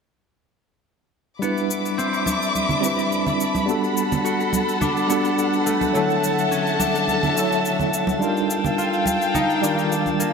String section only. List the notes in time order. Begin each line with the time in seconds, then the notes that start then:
1.41 E5 B5 D6
3.69 A4 F#5
5.94 A4 E5 A5
8.22 F5 G5